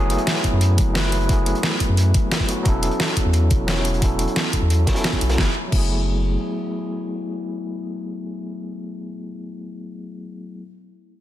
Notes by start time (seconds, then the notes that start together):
Already playing: F#1 F#3 A3 B3 E4 G#4 B4
0.10 closed hi-hat
0.18 closed hi-hat
0.27 snare, closed hi-hat
0.37 closed hi-hat
0.44 kick, closed hi-hat
0.53 F#2
0.61 closed hi-hat
0.78 F#1, kick, closed hi-hat
0.94 F#3 A3 B3 E4 B4, snare, closed hi-hat
1.04 snare
1.12 closed hi-hat
1.21 closed hi-hat
1.26 F#1 F#3 A3 B3, kick, closed hi-hat
1.31 E4 G#4
1.46 closed hi-hat
1.55 closed hi-hat
1.63 snare, closed hi-hat
1.80 kick, closed hi-hat
1.89 F#2
1.97 closed hi-hat
2.14 kick, closed hi-hat
2.32 snare, closed hi-hat
2.40 kick, snare
2.47 F#3 A3 B3 E4 F#4, closed hi-hat
2.62 E1 F#3 B3 C#4, kick, closed hi-hat
2.68 E4 A4
2.83 closed hi-hat
2.91 closed hi-hat
3.00 snare, closed hi-hat
3.09 closed hi-hat
3.17 kick, closed hi-hat
3.25 E2
3.33 closed hi-hat
3.50 E1, kick, closed hi-hat
3.66 F#3 B3 C#4 E4 C#5, snare, closed hi-hat
3.77 snare
3.85 closed hi-hat
3.94 closed hi-hat
3.99 E1 F#3 B3 C#4, kick, closed hi-hat
4.04 E4 A4
4.19 closed hi-hat
4.27 closed hi-hat
4.36 snare, closed hi-hat
4.53 kick, closed hi-hat
4.62 E2
4.70 closed hi-hat
4.86 F#3 B3 C#4 E4 C#5, kick, snare, closed hi-hat
4.93 F#3 B3 C#4, snare, closed hi-hat
4.98 E4 A4
5.04 snare, closed hi-hat
5.13 kick, closed hi-hat
5.21 B1, closed hi-hat
5.29 snare, closed hi-hat
5.33 F#3 A3
5.38 F#1 B3 E4, kick, snare
5.44 G#4
5.68 F#3 A3
5.72 F#1 B3 E4, kick, crash
5.78 G#4